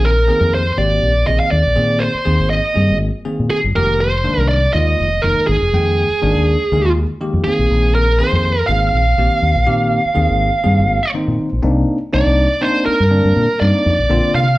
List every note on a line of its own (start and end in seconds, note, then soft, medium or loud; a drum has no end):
0.00 0.30 A#1 medium
0.00 0.13 D#3 medium
0.00 0.13 A#3 medium
0.00 0.13 C4 medium
0.00 0.13 G#4 medium
0.05 0.54 A#4 medium
0.28 0.62 D#3 medium
0.28 0.62 A#3 medium
0.28 0.62 C4 medium
0.28 0.62 G#4 medium
0.41 0.71 F2 medium
0.54 0.76 C5 medium
0.78 0.98 G#1 medium
0.78 1.12 D#3 medium
0.78 1.12 A#3 medium
0.78 1.12 C4 soft
0.78 1.12 G4 medium
0.78 1.27 D5 medium
1.03 1.23 A#1 medium
1.27 1.38 A#1 medium
1.27 1.61 D#3 medium
1.27 1.61 A#3 soft
1.27 1.61 C4 medium
1.27 1.61 G#4 medium
1.27 1.39 D#5 medium
1.40 1.51 F5 medium
1.51 1.63 D#2 medium
1.51 2.02 D5 medium
1.66 1.75 A#1 medium
1.76 2.08 A#2 medium
1.76 2.10 D#3 medium
1.76 2.10 A#3 medium
1.76 2.10 C4 medium
1.76 2.10 G#4 medium
2.00 2.50 C5 medium
2.15 muted fingered electric bass stroke soft
2.25 2.37 D#2 medium
2.25 2.59 D#3 medium
2.25 2.60 A#3 medium
2.25 2.60 C4 medium
2.25 2.60 G#4 medium
2.39 2.59 G#1 medium
2.50 2.96 D#5 medium
2.74 2.92 G2 medium
2.74 3.09 D#3 medium
2.74 3.09 A#3 medium
2.74 3.09 C4 medium
2.74 3.09 G#4 medium
2.90 3.10 G#1 medium
3.25 3.59 D#3 medium
3.25 3.59 A#3 medium
3.25 3.59 C4 medium
3.25 3.59 G#4 medium
3.39 3.48 A#2 medium
3.50 3.57 G#4 medium
3.50 muted fingered electric bass stroke soft
3.64 3.73 G1 medium
3.75 4.27 F1 medium
3.75 4.09 D#3 medium
3.75 4.09 G#3 medium
3.75 4.09 A#3 medium
3.75 4.09 G4 medium
3.75 4.00 A#4 medium
4.00 4.48 C5 medium
4.24 4.58 D#3 medium
4.24 4.58 G#3 medium
4.24 4.58 A#3 medium
4.24 4.58 D4 medium
4.38 4.67 C2 medium
4.49 4.73 D5 medium
4.73 4.94 D#2 medium
4.73 5.08 D#3 medium
4.73 5.08 G#3 medium
4.73 5.08 A#3 medium
4.73 5.08 F4 medium
4.73 5.24 D#5 medium
4.99 5.19 F1 medium
5.22 5.34 F1 medium
5.22 5.57 D#3 medium
5.22 5.57 G#3 soft
5.22 5.57 A#3 medium
5.22 5.58 D#4 medium
5.22 5.47 A#4 medium
5.47 5.59 G#1 medium
5.47 6.91 G#4 medium
5.61 5.70 F1 medium
5.73 6.04 F2 medium
5.73 6.07 D#3 medium
5.73 6.07 G#3 medium
5.73 6.07 A#3 medium
5.73 6.07 G5 medium
6.11 muted fingered electric bass stroke soft
6.22 6.33 G#1 medium
6.22 6.55 D#3 medium
6.22 6.56 G#3 medium
6.22 6.56 A#3 medium
6.22 6.56 D4 medium
6.36 6.55 D#2 medium
6.72 6.85 D2 medium
6.72 7.06 D#3 medium
6.72 7.06 G#3 medium
6.72 7.06 A#3 medium
6.72 7.06 G#4 medium
6.85 7.04 D#2 medium
7.21 7.45 D#3 medium
7.21 7.45 G#3 medium
7.21 7.45 A#3 medium
7.21 7.45 G4 medium
7.33 7.43 F2 medium
7.44 8.05 D#3 medium
7.44 8.05 A#3 medium
7.44 8.05 C4 medium
7.44 7.94 G#4 medium
7.44 8.06 G#4 medium
7.44 muted fingered electric bass stroke soft
7.59 7.68 A#1 medium
7.71 8.21 A#1 medium
7.95 8.17 A#4 medium
8.19 8.53 D#3 medium
8.19 8.53 A#3 medium
8.19 8.54 C4 medium
8.19 8.54 G#4 medium
8.19 8.67 C5 medium
8.33 8.62 F2 medium
8.67 8.89 G#1 medium
8.67 9.02 D#3 medium
8.67 9.03 A#3 medium
8.67 9.03 C4 medium
8.67 9.02 G#4 medium
8.67 11.10 F5 medium
8.93 9.13 A#1 medium
9.18 9.28 A#1 medium
9.18 9.52 D#3 medium
9.18 9.52 A#3 medium
9.18 9.52 C4 medium
9.18 9.52 G4 medium
9.42 9.53 D#2 medium
9.55 9.65 A#1 medium
9.67 9.98 A#2 medium
9.67 10.01 D#3 medium
9.67 10.01 A#3 medium
9.67 10.01 C4 medium
9.67 10.01 G4 medium
10.05 muted fingered electric bass stroke soft
10.15 10.27 D#2 medium
10.15 10.49 D#3 medium
10.15 10.49 A#3 medium
10.15 10.50 C4 medium
10.15 10.50 G#4 medium
10.30 10.50 G#1 medium
10.64 10.80 G2 medium
10.64 10.98 D#3 medium
10.64 10.99 A#3 medium
10.64 10.99 C4 medium
10.64 10.98 G#4 medium
10.79 10.99 G#1 medium
11.14 11.48 D#3 medium
11.14 11.49 A#3 medium
11.14 11.49 C4 medium
11.14 11.49 D#4 medium
11.14 11.60 C5 medium
11.28 11.37 A#2 medium
11.40 muted fingered electric bass stroke soft
11.53 11.62 A#1 medium
11.63 11.84 C2 medium
11.63 11.97 A#3 medium
11.63 11.97 C4 medium
11.63 11.97 D4 medium
11.63 11.97 D#4 medium
12.13 12.24 C2 medium
12.13 12.47 A#3 medium
12.13 12.47 C4 medium
12.13 12.47 D4 medium
12.13 12.47 D#4 medium
12.13 12.64 D5 medium
12.27 12.46 C2 medium
12.61 12.96 A#3 medium
12.61 12.96 C4 medium
12.61 12.96 D4 medium
12.61 12.96 D#4 medium
12.61 12.85 C5 medium
12.86 13.62 A#4 medium
12.86 muted fingered electric bass stroke soft
13.00 13.20 G2 medium
13.10 13.45 D3 medium
13.10 13.45 A#3 medium
13.10 13.45 C4 medium
13.10 13.45 D4 medium
13.25 13.34 G2 medium
13.36 13.47 A#2 medium
13.60 13.71 G2 medium
13.60 13.94 A#3 medium
13.60 13.95 C4 medium
13.60 13.95 D4 medium
13.60 13.95 D#4 medium
13.60 14.35 D5 medium
13.86 13.96 F2 medium
13.99 14.08 A#1 medium
14.09 14.20 A#1 medium
14.09 14.44 D3 medium
14.09 14.44 A#3 medium
14.09 14.43 C4 medium
14.09 14.44 F4 medium
14.34 14.55 C3 medium
14.34 14.58 F5 medium